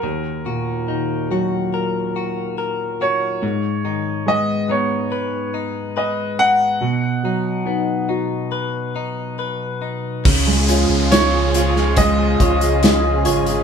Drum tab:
CC |----------------|----------------|----------------|x---------------|
HH |----------------|----------------|----------------|--x-x-x-x-xxx-xx|
SD |----------------|----------------|----------------|----o--o----o---|
BD |----------------|----------------|----------------|o-------o-o-----|